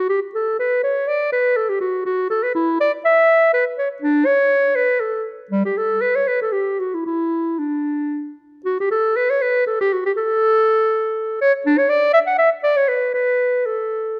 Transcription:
0.09 0.20 G4 medium
0.35 0.58 A4 medium
0.59 0.83 B4 medium
0.83 1.09 C#5 medium
1.08 1.32 D5 medium
1.32 1.58 B4 medium
1.56 1.71 A4 medium
1.69 1.80 G4 medium
1.81 2.04 F#4 medium
2.05 2.29 F#4 medium
2.30 2.45 A4 medium
2.43 2.54 B4 medium
2.55 2.80 E4 medium
2.81 2.92 D5 medium
3.05 3.53 E5 medium
3.53 3.64 B4 medium
3.78 3.89 C#5 medium
4.02 4.27 D4 medium
4.26 4.77 C#5 medium
4.75 5.02 B4 medium
5.00 5.25 A4 medium
5.51 5.64 G3 medium
5.65 5.79 G4 medium
5.77 6.03 A4 medium
6.01 6.17 B4 medium
6.16 6.29 C#5 medium
6.28 6.40 B4 medium
6.41 6.54 A4 medium
6.52 6.81 G4 medium
6.80 6.96 F#4 medium
6.94 7.05 E4 medium
7.06 7.60 E4 medium
7.59 8.39 D4 medium
8.65 8.77 F#4 medium
8.80 8.90 G4 medium
8.91 9.18 A4 medium
9.16 9.32 B4 medium
9.30 9.43 C#5 medium
9.42 9.66 B4 medium
9.67 9.79 A4 medium
9.81 9.95 G4 medium
9.93 10.05 F#4 medium
10.06 10.11 G4 medium
10.17 11.38 A4 medium
11.41 11.52 C#5 medium
11.66 11.79 D4 medium
11.78 11.91 C#5 medium
11.89 12.13 D5 medium
12.14 12.19 E5 medium
12.27 12.38 F#5 medium
12.38 12.49 E5 medium
12.64 12.78 D5 medium
12.77 12.90 C#5 medium
12.88 13.13 B4 medium
13.14 13.68 B4 medium
13.66 14.20 A4 medium

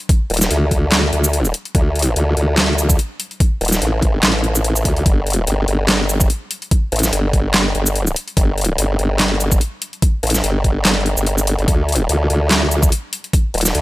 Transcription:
0.09 kick loud
0.09 closed hi-hat medium
0.30 0.49 D#1 medium
0.30 closed hi-hat medium
0.34 closed hi-hat medium
0.37 closed hi-hat medium
0.41 snare soft
0.41 shaker medium
0.51 1.11 D2 loud
0.51 closed hi-hat medium
0.71 kick medium
0.71 closed hi-hat medium
0.92 snare loud
0.92 clap medium
0.92 closed hi-hat medium
1.13 1.53 D2 loud
1.13 closed hi-hat medium
1.24 shaker medium
1.33 closed hi-hat medium
1.45 shaker medium
1.54 open hi-hat medium
1.65 closed hi-hat soft
1.75 2.15 D2 loud
1.75 kick loud
1.75 closed hi-hat medium
1.95 closed hi-hat medium
1.99 closed hi-hat medium
2.02 closed hi-hat medium
2.16 2.35 D2 loud
2.16 closed hi-hat medium
2.37 2.97 D2 medium
2.37 closed hi-hat medium
2.58 snare loud
2.58 clap medium
2.58 closed hi-hat medium
2.78 closed hi-hat medium
2.78 shaker medium
2.90 kick loud
2.90 shaker medium
2.99 closed hi-hat medium
3.20 open hi-hat medium
3.31 closed hi-hat soft
3.40 kick loud
3.40 closed hi-hat medium
3.61 3.80 D#1 medium
3.61 closed hi-hat soft
3.65 closed hi-hat medium
3.68 closed hi-hat medium
3.72 snare soft
3.72 shaker medium
3.82 4.22 A1 loud
3.82 closed hi-hat medium
4.02 kick medium
4.02 closed hi-hat medium
4.23 4.84 A1 loud
4.23 snare loud
4.23 clap medium
4.23 closed hi-hat medium
4.44 closed hi-hat soft
4.55 shaker medium
4.64 closed hi-hat medium
4.76 shaker medium
4.85 5.04 D2 loud
4.85 kick medium
4.85 open hi-hat medium
4.96 closed hi-hat soft
5.06 5.46 G1 loud
5.06 kick loud
5.06 closed hi-hat medium
5.27 closed hi-hat medium
5.30 closed hi-hat medium
5.33 closed hi-hat medium
5.47 5.66 G1 loud
5.47 closed hi-hat medium
5.68 6.28 G1 loud
5.68 closed hi-hat medium
5.89 snare loud
5.89 clap medium
5.89 closed hi-hat medium
6.09 closed hi-hat medium
6.09 shaker medium
6.21 kick loud
6.21 shaker medium
6.30 closed hi-hat medium
6.51 open hi-hat medium
6.62 closed hi-hat soft
6.71 kick loud
6.71 closed hi-hat medium
6.92 7.11 A1 loud
6.92 closed hi-hat medium
6.96 closed hi-hat medium
6.99 closed hi-hat medium
7.03 snare soft
7.03 shaker medium
7.13 7.73 G1 loud
7.13 closed hi-hat medium
7.33 kick medium
7.33 closed hi-hat medium
7.54 snare loud
7.54 clap medium
7.54 closed hi-hat medium
7.75 8.15 G1 medium
7.75 closed hi-hat medium
7.86 shaker medium
7.96 closed hi-hat medium
8.07 shaker medium
8.16 open hi-hat loud
8.28 closed hi-hat soft
8.37 8.77 G1 loud
8.37 kick loud
8.37 closed hi-hat medium
8.58 closed hi-hat medium
8.61 closed hi-hat medium
8.65 closed hi-hat medium
8.78 8.97 G1 loud
8.78 closed hi-hat medium
8.99 9.60 G1 loud
8.99 closed hi-hat medium
9.20 snare loud
9.20 clap medium
9.20 closed hi-hat medium
9.40 closed hi-hat medium
9.40 shaker medium
9.52 kick loud
9.52 shaker medium
9.61 closed hi-hat medium
9.82 open hi-hat loud
9.93 closed hi-hat soft
10.02 kick loud
10.02 closed hi-hat medium
10.23 10.42 A1 loud
10.23 closed hi-hat medium
10.27 closed hi-hat medium
10.30 closed hi-hat medium
10.34 snare soft
10.34 shaker medium
10.44 10.84 G1 loud
10.44 closed hi-hat medium
10.64 kick medium
10.64 closed hi-hat medium
10.85 11.15 G1 loud
10.85 snare loud
10.85 clap medium
10.85 closed hi-hat medium
11.06 closed hi-hat medium
11.17 11.57 G1 loud
11.17 shaker medium
11.27 closed hi-hat medium
11.38 shaker medium
11.47 open hi-hat loud
11.59 11.66 G1 loud
11.59 closed hi-hat soft
11.68 12.08 D2 loud
11.68 kick loud
11.68 closed hi-hat medium
11.89 closed hi-hat medium
11.92 closed hi-hat medium
11.96 closed hi-hat medium
12.09 12.28 D2 loud
12.09 closed hi-hat medium
12.30 12.90 D2 medium
12.30 closed hi-hat medium
12.51 snare loud
12.51 clap medium
12.51 closed hi-hat medium
12.71 closed hi-hat medium
12.71 shaker medium
12.83 kick loud
12.83 shaker medium
12.92 closed hi-hat medium
13.13 open hi-hat loud
13.24 closed hi-hat soft
13.33 kick loud
13.33 closed hi-hat medium
13.54 13.73 D#1 loud
13.54 closed hi-hat medium
13.58 closed hi-hat medium
13.61 closed hi-hat medium
13.65 snare soft
13.65 shaker medium
13.75 13.81 D2 loud
13.75 closed hi-hat medium

